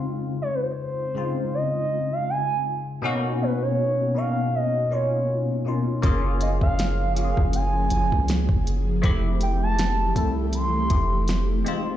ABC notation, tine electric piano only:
X:1
M:4/4
L:1/16
Q:"Swing 16ths" 1/4=80
K:Fdor
V:1 name="Tine electric piano"
[_D,A,CEF]4 z2 [D,A,CEF]6 z4 | [=B,,^A,^C^D^F]4 z2 [B,,A,CDF]3 z [B,,A,CD=F]3 z [B,,A,CDF]2 | [B,_DFA]4 z2 [B,DF_GA]6 z4 | [=A,C=EG]4 z2 [A,CE=A]3 z [A,CEG]3 z [_A,C_EF]2 |]